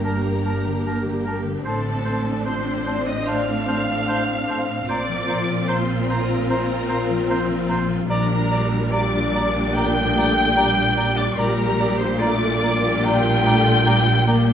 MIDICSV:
0, 0, Header, 1, 11, 480
1, 0, Start_track
1, 0, Key_signature, -2, "minor"
1, 0, Tempo, 805369
1, 990, Time_signature, 4, 2, 24, 8
1, 4827, Tempo, 821918
1, 8583, End_track
2, 0, Start_track
2, 0, Title_t, "Violin section"
2, 0, Program_c, 0, 48
2, 28, Note_on_c, 0, 82, 79
2, 737, Note_off_c, 0, 82, 0
2, 990, Note_on_c, 0, 81, 94
2, 1447, Note_off_c, 0, 81, 0
2, 1479, Note_on_c, 0, 84, 86
2, 1835, Note_on_c, 0, 87, 79
2, 1837, Note_off_c, 0, 84, 0
2, 1951, Note_on_c, 0, 89, 104
2, 1954, Note_off_c, 0, 87, 0
2, 2913, Note_on_c, 0, 86, 119
2, 2916, Note_off_c, 0, 89, 0
2, 3382, Note_off_c, 0, 86, 0
2, 3394, Note_on_c, 0, 84, 90
2, 3632, Note_off_c, 0, 84, 0
2, 3632, Note_on_c, 0, 82, 88
2, 3864, Note_off_c, 0, 82, 0
2, 3871, Note_on_c, 0, 82, 92
2, 4572, Note_off_c, 0, 82, 0
2, 4827, Note_on_c, 0, 82, 110
2, 5279, Note_off_c, 0, 82, 0
2, 5300, Note_on_c, 0, 86, 107
2, 5793, Note_off_c, 0, 86, 0
2, 5806, Note_on_c, 0, 91, 127
2, 6610, Note_off_c, 0, 91, 0
2, 6623, Note_on_c, 0, 86, 102
2, 6739, Note_on_c, 0, 82, 121
2, 6740, Note_off_c, 0, 86, 0
2, 7098, Note_off_c, 0, 82, 0
2, 7109, Note_on_c, 0, 84, 102
2, 7224, Note_off_c, 0, 84, 0
2, 7226, Note_on_c, 0, 86, 120
2, 7717, Note_off_c, 0, 86, 0
2, 7717, Note_on_c, 0, 91, 127
2, 8583, Note_off_c, 0, 91, 0
2, 8583, End_track
3, 0, Start_track
3, 0, Title_t, "Flute"
3, 0, Program_c, 1, 73
3, 31, Note_on_c, 1, 81, 54
3, 85, Note_off_c, 1, 81, 0
3, 273, Note_on_c, 1, 81, 51
3, 328, Note_off_c, 1, 81, 0
3, 517, Note_on_c, 1, 81, 52
3, 570, Note_off_c, 1, 81, 0
3, 759, Note_on_c, 1, 81, 53
3, 812, Note_off_c, 1, 81, 0
3, 997, Note_on_c, 1, 81, 60
3, 1050, Note_off_c, 1, 81, 0
3, 1234, Note_on_c, 1, 81, 50
3, 1288, Note_off_c, 1, 81, 0
3, 1471, Note_on_c, 1, 81, 57
3, 1526, Note_off_c, 1, 81, 0
3, 1710, Note_on_c, 1, 81, 48
3, 1765, Note_off_c, 1, 81, 0
3, 1954, Note_on_c, 1, 81, 62
3, 2008, Note_off_c, 1, 81, 0
3, 2194, Note_on_c, 1, 81, 54
3, 2249, Note_off_c, 1, 81, 0
3, 2437, Note_on_c, 1, 81, 54
3, 2492, Note_off_c, 1, 81, 0
3, 2682, Note_on_c, 1, 81, 57
3, 2736, Note_off_c, 1, 81, 0
3, 2921, Note_on_c, 1, 82, 65
3, 2974, Note_off_c, 1, 82, 0
3, 3154, Note_on_c, 1, 82, 60
3, 3207, Note_off_c, 1, 82, 0
3, 3389, Note_on_c, 1, 82, 64
3, 3443, Note_off_c, 1, 82, 0
3, 3637, Note_on_c, 1, 82, 57
3, 3690, Note_off_c, 1, 82, 0
3, 3876, Note_on_c, 1, 82, 66
3, 3929, Note_off_c, 1, 82, 0
3, 4106, Note_on_c, 1, 82, 66
3, 4160, Note_off_c, 1, 82, 0
3, 4347, Note_on_c, 1, 82, 66
3, 4401, Note_off_c, 1, 82, 0
3, 4584, Note_on_c, 1, 82, 65
3, 4638, Note_off_c, 1, 82, 0
3, 4825, Note_on_c, 1, 82, 71
3, 4879, Note_off_c, 1, 82, 0
3, 5069, Note_on_c, 1, 82, 64
3, 5122, Note_off_c, 1, 82, 0
3, 5311, Note_on_c, 1, 82, 73
3, 5365, Note_off_c, 1, 82, 0
3, 5559, Note_on_c, 1, 82, 65
3, 5613, Note_off_c, 1, 82, 0
3, 5800, Note_on_c, 1, 82, 72
3, 5853, Note_off_c, 1, 82, 0
3, 6044, Note_on_c, 1, 82, 68
3, 6095, Note_off_c, 1, 82, 0
3, 6269, Note_on_c, 1, 82, 71
3, 6321, Note_off_c, 1, 82, 0
3, 6506, Note_on_c, 1, 82, 68
3, 6559, Note_off_c, 1, 82, 0
3, 6747, Note_on_c, 1, 82, 77
3, 6800, Note_off_c, 1, 82, 0
3, 6986, Note_on_c, 1, 82, 70
3, 7039, Note_off_c, 1, 82, 0
3, 7232, Note_on_c, 1, 82, 82
3, 7285, Note_off_c, 1, 82, 0
3, 7476, Note_on_c, 1, 82, 65
3, 7531, Note_off_c, 1, 82, 0
3, 7721, Note_on_c, 1, 82, 82
3, 7774, Note_off_c, 1, 82, 0
3, 7961, Note_on_c, 1, 82, 70
3, 8013, Note_off_c, 1, 82, 0
3, 8193, Note_on_c, 1, 82, 79
3, 8246, Note_off_c, 1, 82, 0
3, 8433, Note_on_c, 1, 82, 75
3, 8486, Note_off_c, 1, 82, 0
3, 8583, End_track
4, 0, Start_track
4, 0, Title_t, "Clarinet"
4, 0, Program_c, 2, 71
4, 29, Note_on_c, 2, 70, 65
4, 738, Note_off_c, 2, 70, 0
4, 988, Note_on_c, 2, 69, 62
4, 1476, Note_on_c, 2, 72, 67
4, 1485, Note_off_c, 2, 69, 0
4, 1831, Note_on_c, 2, 75, 73
4, 1839, Note_off_c, 2, 72, 0
4, 1955, Note_on_c, 2, 77, 92
4, 1964, Note_off_c, 2, 75, 0
4, 2913, Note_off_c, 2, 77, 0
4, 2917, Note_on_c, 2, 74, 85
4, 3391, Note_on_c, 2, 72, 69
4, 3400, Note_off_c, 2, 74, 0
4, 3626, Note_on_c, 2, 70, 76
4, 3635, Note_off_c, 2, 72, 0
4, 3860, Note_off_c, 2, 70, 0
4, 3864, Note_on_c, 2, 70, 82
4, 4569, Note_off_c, 2, 70, 0
4, 4831, Note_on_c, 2, 70, 86
4, 5302, Note_on_c, 2, 74, 91
4, 5311, Note_off_c, 2, 70, 0
4, 5785, Note_on_c, 2, 79, 113
4, 5794, Note_off_c, 2, 74, 0
4, 6621, Note_on_c, 2, 74, 92
4, 6630, Note_off_c, 2, 79, 0
4, 6739, Note_off_c, 2, 74, 0
4, 6742, Note_on_c, 2, 70, 89
4, 7096, Note_on_c, 2, 72, 87
4, 7104, Note_off_c, 2, 70, 0
4, 7221, Note_on_c, 2, 74, 99
4, 7229, Note_off_c, 2, 72, 0
4, 7716, Note_on_c, 2, 79, 116
4, 7725, Note_off_c, 2, 74, 0
4, 8506, Note_off_c, 2, 79, 0
4, 8583, End_track
5, 0, Start_track
5, 0, Title_t, "Oboe"
5, 0, Program_c, 3, 68
5, 25, Note_on_c, 3, 70, 53
5, 120, Note_off_c, 3, 70, 0
5, 269, Note_on_c, 3, 70, 51
5, 365, Note_off_c, 3, 70, 0
5, 513, Note_on_c, 3, 70, 52
5, 608, Note_off_c, 3, 70, 0
5, 746, Note_on_c, 3, 70, 48
5, 841, Note_off_c, 3, 70, 0
5, 982, Note_on_c, 3, 72, 59
5, 1078, Note_off_c, 3, 72, 0
5, 1223, Note_on_c, 3, 72, 54
5, 1318, Note_off_c, 3, 72, 0
5, 1462, Note_on_c, 3, 72, 56
5, 1557, Note_off_c, 3, 72, 0
5, 1703, Note_on_c, 3, 72, 53
5, 1799, Note_off_c, 3, 72, 0
5, 1944, Note_on_c, 3, 72, 58
5, 2039, Note_off_c, 3, 72, 0
5, 2191, Note_on_c, 3, 72, 55
5, 2287, Note_off_c, 3, 72, 0
5, 2434, Note_on_c, 3, 72, 61
5, 2529, Note_off_c, 3, 72, 0
5, 2672, Note_on_c, 3, 72, 55
5, 2768, Note_off_c, 3, 72, 0
5, 2912, Note_on_c, 3, 72, 63
5, 3007, Note_off_c, 3, 72, 0
5, 3141, Note_on_c, 3, 72, 54
5, 3237, Note_off_c, 3, 72, 0
5, 3384, Note_on_c, 3, 72, 69
5, 3480, Note_off_c, 3, 72, 0
5, 3635, Note_on_c, 3, 72, 64
5, 3730, Note_off_c, 3, 72, 0
5, 3872, Note_on_c, 3, 72, 63
5, 3967, Note_off_c, 3, 72, 0
5, 4103, Note_on_c, 3, 72, 64
5, 4199, Note_off_c, 3, 72, 0
5, 4355, Note_on_c, 3, 72, 65
5, 4451, Note_off_c, 3, 72, 0
5, 4593, Note_on_c, 3, 72, 63
5, 4688, Note_off_c, 3, 72, 0
5, 4827, Note_on_c, 3, 74, 74
5, 4921, Note_off_c, 3, 74, 0
5, 5067, Note_on_c, 3, 74, 65
5, 5161, Note_off_c, 3, 74, 0
5, 5303, Note_on_c, 3, 74, 67
5, 5397, Note_off_c, 3, 74, 0
5, 5555, Note_on_c, 3, 74, 73
5, 5648, Note_off_c, 3, 74, 0
5, 5797, Note_on_c, 3, 74, 74
5, 5891, Note_off_c, 3, 74, 0
5, 6036, Note_on_c, 3, 74, 72
5, 6130, Note_off_c, 3, 74, 0
5, 6267, Note_on_c, 3, 74, 70
5, 6361, Note_off_c, 3, 74, 0
5, 6500, Note_on_c, 3, 74, 66
5, 6594, Note_off_c, 3, 74, 0
5, 6742, Note_on_c, 3, 74, 78
5, 6835, Note_off_c, 3, 74, 0
5, 6989, Note_on_c, 3, 74, 70
5, 7083, Note_off_c, 3, 74, 0
5, 7226, Note_on_c, 3, 74, 74
5, 7320, Note_off_c, 3, 74, 0
5, 7468, Note_on_c, 3, 74, 74
5, 7562, Note_off_c, 3, 74, 0
5, 7719, Note_on_c, 3, 74, 70
5, 7812, Note_off_c, 3, 74, 0
5, 7958, Note_on_c, 3, 74, 73
5, 8051, Note_off_c, 3, 74, 0
5, 8194, Note_on_c, 3, 74, 76
5, 8288, Note_off_c, 3, 74, 0
5, 8431, Note_on_c, 3, 74, 66
5, 8525, Note_off_c, 3, 74, 0
5, 8583, End_track
6, 0, Start_track
6, 0, Title_t, "Violin section"
6, 0, Program_c, 4, 48
6, 24, Note_on_c, 4, 70, 64
6, 735, Note_off_c, 4, 70, 0
6, 990, Note_on_c, 4, 69, 70
6, 1447, Note_off_c, 4, 69, 0
6, 1474, Note_on_c, 4, 72, 73
6, 1829, Note_on_c, 4, 75, 73
6, 1834, Note_off_c, 4, 72, 0
6, 1952, Note_off_c, 4, 75, 0
6, 1957, Note_on_c, 4, 77, 84
6, 2919, Note_off_c, 4, 77, 0
6, 2922, Note_on_c, 4, 74, 90
6, 3387, Note_off_c, 4, 74, 0
6, 3393, Note_on_c, 4, 72, 72
6, 3632, Note_off_c, 4, 72, 0
6, 3647, Note_on_c, 4, 70, 73
6, 3871, Note_off_c, 4, 70, 0
6, 3878, Note_on_c, 4, 70, 77
6, 4576, Note_off_c, 4, 70, 0
6, 4832, Note_on_c, 4, 70, 83
6, 5281, Note_off_c, 4, 70, 0
6, 5313, Note_on_c, 4, 74, 92
6, 5798, Note_on_c, 4, 79, 109
6, 5799, Note_off_c, 4, 74, 0
6, 6622, Note_off_c, 4, 79, 0
6, 6628, Note_on_c, 4, 74, 90
6, 6743, Note_off_c, 4, 74, 0
6, 6748, Note_on_c, 4, 70, 92
6, 7095, Note_off_c, 4, 70, 0
6, 7110, Note_on_c, 4, 72, 83
6, 7224, Note_off_c, 4, 72, 0
6, 7226, Note_on_c, 4, 74, 94
6, 7713, Note_on_c, 4, 79, 115
6, 7717, Note_off_c, 4, 74, 0
6, 8583, Note_off_c, 4, 79, 0
6, 8583, End_track
7, 0, Start_track
7, 0, Title_t, "French horn section"
7, 0, Program_c, 5, 60
7, 0, Note_on_c, 5, 58, 67
7, 0, Note_on_c, 5, 62, 64
7, 958, Note_off_c, 5, 58, 0
7, 959, Note_off_c, 5, 62, 0
7, 989, Note_on_c, 5, 60, 74
7, 989, Note_on_c, 5, 62, 72
7, 2808, Note_off_c, 5, 60, 0
7, 2808, Note_off_c, 5, 62, 0
7, 2909, Note_on_c, 5, 60, 84
7, 2911, Note_on_c, 5, 65, 75
7, 4799, Note_off_c, 5, 60, 0
7, 4800, Note_off_c, 5, 65, 0
7, 4820, Note_on_c, 5, 55, 90
7, 4822, Note_on_c, 5, 62, 87
7, 6712, Note_off_c, 5, 55, 0
7, 6712, Note_off_c, 5, 62, 0
7, 6747, Note_on_c, 5, 62, 94
7, 6750, Note_on_c, 5, 55, 97
7, 8560, Note_off_c, 5, 55, 0
7, 8560, Note_off_c, 5, 62, 0
7, 8583, End_track
8, 0, Start_track
8, 0, Title_t, "Harp"
8, 0, Program_c, 6, 46
8, 0, Note_on_c, 6, 43, 55
8, 0, Note_on_c, 6, 50, 41
8, 0, Note_on_c, 6, 55, 45
8, 0, Note_on_c, 6, 58, 44
8, 0, Note_on_c, 6, 67, 49
8, 0, Note_on_c, 6, 79, 51
8, 24, Note_on_c, 6, 70, 52
8, 141, Note_off_c, 6, 67, 0
8, 148, Note_on_c, 6, 67, 41
8, 263, Note_off_c, 6, 55, 0
8, 270, Note_on_c, 6, 55, 47
8, 388, Note_off_c, 6, 50, 0
8, 395, Note_on_c, 6, 50, 48
8, 513, Note_off_c, 6, 55, 0
8, 520, Note_on_c, 6, 55, 48
8, 629, Note_off_c, 6, 50, 0
8, 636, Note_on_c, 6, 50, 48
8, 747, Note_off_c, 6, 55, 0
8, 754, Note_on_c, 6, 55, 45
8, 867, Note_off_c, 6, 50, 0
8, 874, Note_on_c, 6, 50, 46
8, 994, Note_on_c, 6, 45, 60
8, 1005, Note_off_c, 6, 43, 0
8, 1006, Note_off_c, 6, 58, 0
8, 1006, Note_off_c, 6, 79, 0
8, 1007, Note_off_c, 6, 70, 0
8, 1009, Note_off_c, 6, 67, 0
8, 1010, Note_off_c, 6, 50, 0
8, 1010, Note_off_c, 6, 55, 0
8, 1110, Note_on_c, 6, 57, 45
8, 1230, Note_on_c, 6, 60, 47
8, 1353, Note_on_c, 6, 62, 48
8, 1473, Note_on_c, 6, 65, 51
8, 1592, Note_on_c, 6, 72, 51
8, 1710, Note_on_c, 6, 74, 53
8, 1834, Note_on_c, 6, 77, 50
8, 1948, Note_off_c, 6, 74, 0
8, 1955, Note_on_c, 6, 74, 60
8, 2064, Note_off_c, 6, 65, 0
8, 2072, Note_on_c, 6, 65, 48
8, 2185, Note_off_c, 6, 60, 0
8, 2192, Note_on_c, 6, 60, 51
8, 2307, Note_off_c, 6, 57, 0
8, 2314, Note_on_c, 6, 57, 52
8, 2424, Note_off_c, 6, 60, 0
8, 2431, Note_on_c, 6, 60, 52
8, 2546, Note_off_c, 6, 57, 0
8, 2553, Note_on_c, 6, 57, 52
8, 2665, Note_off_c, 6, 60, 0
8, 2672, Note_on_c, 6, 60, 53
8, 2786, Note_off_c, 6, 57, 0
8, 2793, Note_on_c, 6, 57, 49
8, 2910, Note_on_c, 6, 46, 65
8, 2934, Note_off_c, 6, 57, 0
8, 2937, Note_off_c, 6, 74, 0
8, 2938, Note_off_c, 6, 62, 0
8, 2939, Note_off_c, 6, 45, 0
8, 3030, Note_on_c, 6, 53, 50
8, 3151, Note_on_c, 6, 58, 58
8, 3261, Note_off_c, 6, 60, 0
8, 3268, Note_on_c, 6, 60, 54
8, 3384, Note_off_c, 6, 65, 0
8, 3391, Note_on_c, 6, 65, 60
8, 3622, Note_off_c, 6, 72, 0
8, 3629, Note_on_c, 6, 72, 60
8, 3740, Note_off_c, 6, 77, 0
8, 3747, Note_on_c, 6, 77, 61
8, 3859, Note_off_c, 6, 72, 0
8, 3866, Note_on_c, 6, 72, 64
8, 3987, Note_off_c, 6, 65, 0
8, 3994, Note_on_c, 6, 65, 57
8, 4105, Note_off_c, 6, 58, 0
8, 4112, Note_on_c, 6, 58, 55
8, 4223, Note_off_c, 6, 53, 0
8, 4231, Note_on_c, 6, 53, 58
8, 4349, Note_off_c, 6, 58, 0
8, 4356, Note_on_c, 6, 58, 62
8, 4464, Note_off_c, 6, 53, 0
8, 4471, Note_on_c, 6, 53, 59
8, 4583, Note_off_c, 6, 58, 0
8, 4590, Note_on_c, 6, 58, 59
8, 4700, Note_off_c, 6, 53, 0
8, 4707, Note_on_c, 6, 53, 57
8, 4820, Note_off_c, 6, 46, 0
8, 4827, Note_on_c, 6, 46, 76
8, 4842, Note_off_c, 6, 60, 0
8, 4843, Note_off_c, 6, 72, 0
8, 4844, Note_off_c, 6, 77, 0
8, 4846, Note_off_c, 6, 53, 0
8, 4847, Note_off_c, 6, 65, 0
8, 4946, Note_on_c, 6, 55, 56
8, 5186, Note_on_c, 6, 62, 58
8, 5307, Note_on_c, 6, 67, 70
8, 5552, Note_on_c, 6, 74, 66
8, 5676, Note_on_c, 6, 79, 70
8, 5786, Note_off_c, 6, 74, 0
8, 5793, Note_on_c, 6, 74, 70
8, 5906, Note_off_c, 6, 67, 0
8, 5913, Note_on_c, 6, 67, 62
8, 6147, Note_off_c, 6, 55, 0
8, 6154, Note_on_c, 6, 55, 68
8, 6381, Note_off_c, 6, 55, 0
8, 6388, Note_on_c, 6, 55, 66
8, 6617, Note_off_c, 6, 55, 0
8, 6624, Note_on_c, 6, 55, 58
8, 6737, Note_off_c, 6, 46, 0
8, 6744, Note_on_c, 6, 46, 81
8, 6872, Note_off_c, 6, 58, 0
8, 6968, Note_off_c, 6, 55, 0
8, 6975, Note_on_c, 6, 55, 68
8, 7093, Note_off_c, 6, 62, 0
8, 7100, Note_on_c, 6, 62, 59
8, 7212, Note_off_c, 6, 67, 0
8, 7219, Note_on_c, 6, 67, 71
8, 7460, Note_off_c, 6, 74, 0
8, 7467, Note_on_c, 6, 74, 69
8, 7585, Note_off_c, 6, 79, 0
8, 7592, Note_on_c, 6, 79, 67
8, 7708, Note_off_c, 6, 74, 0
8, 7715, Note_on_c, 6, 74, 77
8, 7830, Note_off_c, 6, 67, 0
8, 7837, Note_on_c, 6, 67, 59
8, 7957, Note_on_c, 6, 57, 62
8, 8076, Note_off_c, 6, 55, 0
8, 8083, Note_on_c, 6, 55, 72
8, 8190, Note_off_c, 6, 57, 0
8, 8197, Note_on_c, 6, 57, 66
8, 8309, Note_off_c, 6, 55, 0
8, 8316, Note_on_c, 6, 55, 64
8, 8426, Note_off_c, 6, 57, 0
8, 8433, Note_on_c, 6, 57, 67
8, 8538, Note_off_c, 6, 55, 0
8, 8545, Note_on_c, 6, 55, 60
8, 8583, Note_off_c, 6, 46, 0
8, 8583, Note_off_c, 6, 55, 0
8, 8583, Note_off_c, 6, 57, 0
8, 8583, Note_off_c, 6, 62, 0
8, 8583, Note_off_c, 6, 67, 0
8, 8583, Note_off_c, 6, 74, 0
8, 8583, Note_off_c, 6, 79, 0
8, 8583, End_track
9, 0, Start_track
9, 0, Title_t, "Viola section"
9, 0, Program_c, 7, 48
9, 0, Note_on_c, 7, 58, 59
9, 0, Note_on_c, 7, 67, 54
9, 962, Note_off_c, 7, 67, 0
9, 964, Note_off_c, 7, 58, 0
9, 991, Note_on_c, 7, 62, 62
9, 993, Note_on_c, 7, 60, 63
9, 2895, Note_off_c, 7, 60, 0
9, 2906, Note_on_c, 7, 60, 70
9, 2909, Note_on_c, 7, 65, 70
9, 2918, Note_off_c, 7, 62, 0
9, 4797, Note_off_c, 7, 60, 0
9, 4799, Note_off_c, 7, 65, 0
9, 4829, Note_on_c, 7, 55, 73
9, 4829, Note_on_c, 7, 62, 78
9, 5280, Note_off_c, 7, 62, 0
9, 5303, Note_on_c, 7, 62, 79
9, 5771, Note_off_c, 7, 55, 0
9, 5790, Note_on_c, 7, 58, 78
9, 6031, Note_off_c, 7, 58, 0
9, 6034, Note_on_c, 7, 57, 81
9, 6248, Note_off_c, 7, 62, 0
9, 6267, Note_on_c, 7, 62, 76
9, 6268, Note_off_c, 7, 57, 0
9, 6270, Note_on_c, 7, 55, 82
9, 6504, Note_off_c, 7, 55, 0
9, 6510, Note_on_c, 7, 55, 81
9, 6729, Note_off_c, 7, 62, 0
9, 6742, Note_on_c, 7, 67, 84
9, 7208, Note_off_c, 7, 55, 0
9, 7210, Note_off_c, 7, 67, 0
9, 7218, Note_on_c, 7, 57, 87
9, 7223, Note_on_c, 7, 65, 79
9, 7460, Note_off_c, 7, 57, 0
9, 7468, Note_on_c, 7, 58, 85
9, 7709, Note_off_c, 7, 58, 0
9, 7716, Note_on_c, 7, 58, 79
9, 7952, Note_off_c, 7, 58, 0
9, 7956, Note_on_c, 7, 57, 87
9, 8193, Note_off_c, 7, 57, 0
9, 8198, Note_on_c, 7, 55, 83
9, 8432, Note_off_c, 7, 55, 0
9, 8432, Note_on_c, 7, 58, 91
9, 8583, Note_off_c, 7, 58, 0
9, 8583, Note_off_c, 7, 65, 0
9, 8583, End_track
10, 0, Start_track
10, 0, Title_t, "Cello section"
10, 0, Program_c, 8, 48
10, 0, Note_on_c, 8, 43, 63
10, 986, Note_off_c, 8, 43, 0
10, 990, Note_on_c, 8, 45, 70
10, 2894, Note_off_c, 8, 45, 0
10, 2913, Note_on_c, 8, 46, 75
10, 4801, Note_off_c, 8, 46, 0
10, 4825, Note_on_c, 8, 46, 81
10, 6714, Note_off_c, 8, 46, 0
10, 6737, Note_on_c, 8, 46, 91
10, 8583, Note_off_c, 8, 46, 0
10, 8583, End_track
11, 0, Start_track
11, 0, Title_t, "Double bass section"
11, 0, Program_c, 10, 48
11, 0, Note_on_c, 10, 31, 59
11, 990, Note_off_c, 10, 31, 0
11, 990, Note_on_c, 10, 33, 62
11, 2894, Note_off_c, 10, 33, 0
11, 2921, Note_on_c, 10, 34, 72
11, 4805, Note_off_c, 10, 34, 0
11, 4826, Note_on_c, 10, 34, 77
11, 6715, Note_off_c, 10, 34, 0
11, 6741, Note_on_c, 10, 34, 89
11, 8583, Note_off_c, 10, 34, 0
11, 8583, End_track
0, 0, End_of_file